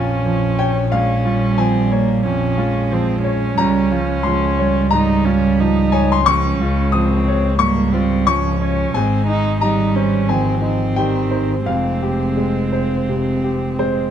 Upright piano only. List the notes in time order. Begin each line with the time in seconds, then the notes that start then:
Already playing: A#1 F2 F3 F4 C#5 G#5 A#5
0.25 F3
0.59 C#5 G5
0.92 A#1 F5
1.25 F4
1.57 F3 G#5
1.92 C#5
2.25 F2
2.58 F4
2.92 F3
3.24 C#5
3.58 C#2 A#5
3.92 F4
4.23 F3 C6
4.59 C#5
4.91 G#2 A#5
5.26 F4
5.60 F3
5.92 C#5 G#5
6.12 C6
6.26 C#2 C#6
6.61 F4
6.92 F3 D#6
7.28 C#5
7.59 G#2 C#6
7.94 F4
8.27 F3 C#6
8.62 C#5
8.94 G#2 G#5
9.29 D#4
9.61 G3 A#5
9.96 C5
10.29 D#3 G#5
10.62 D#4
10.96 G3 G5
11.31 C5
11.66 F2 F5
12.02 G4
12.37 G#3
12.73 C5
13.09 C3
13.44 G4
13.79 G#3 C5